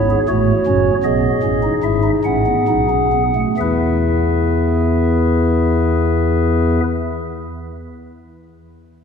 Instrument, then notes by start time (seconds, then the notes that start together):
pipe organ
Already playing: G#1 G#2 B3 C#5
0.10 G#4
0.28 A1 A2 A3 F#4 C#5
0.66 F#1 F#2 C#4
1.04 B1 B2 B3 G#4 D#5
1.43 A1 A2 C#4
1.63 D#4
1.83 G#1 G#2 E4 E5
2.04 D#4
2.24 A1 A2 C#4 F#5
2.46 B3
2.68 B1 B2 D#4
2.90 C#4
3.12 B3
3.35 A3
3.57 E2 E3 B3 E4 G#4 B4 E5